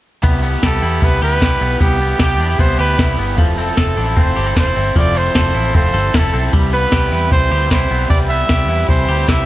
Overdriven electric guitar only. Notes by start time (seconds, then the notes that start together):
0.23 C3 G3 B3 E4 G4
0.42 B3 E4 G4
0.62 G3 B3 E4 G4
0.82 B3 E4 G4
1.01 C3 G3 B3 E4 G4
1.20 B3 E4 G4
1.40 G3 B3 E4 G4
1.61 B3 E4 G4
1.79 C3 G3 B3 E4 G4
1.98 B3 E4 G4
2.18 G3 B3 E4 G4
2.38 B3 E4 G4
2.57 C3 G3 B3 E4 G4
2.77 B3 E4 G4
2.97 G3 B3 E4 G4
3.17 B3 E4 G4
3.36 F3 A3 C4 E4 A4
3.56 C4 E4 A4
3.75 A3 C4 E4 A4
3.95 C4 E4 A4
4.16 F3 A3 C4 E4 A4
4.35 C4 E4 A4
4.55 A3 C4 E4 A4
4.75 C4 E4 A4
4.96 F3 A3 C4 E4 A4
5.15 C4 E4 A4
5.34 A3 C4 E4 A4
5.54 C4 E4 A4
5.74 F3 A3 C4 E4 A4
5.94 C4 E4 A4
6.13 A3 C4 E4 A4
6.33 C4 E4 A4
6.52 C3 E3 G3 C4 E4 B4
6.72 G3 C4 E4 B4
6.90 G3 C4 E4 B4
7.11 G3 C4 E4 B4
7.31 C3 E3 G3 C4 E4 B4
7.50 G3 C4 E4 B4
7.70 G3 C4 E4 B4
7.89 G3 C4 E4 B4
8.09 C3 E3 G3 C4 E4 B4
8.30 G3 C4 E4 B4
8.49 G3 C4 E4 B4
8.69 G3 C4 E4 B4
8.89 C3 E3 G3 C4 E4 B4
9.08 G3 C4 E4 B4
9.28 G3 C4 E4 B4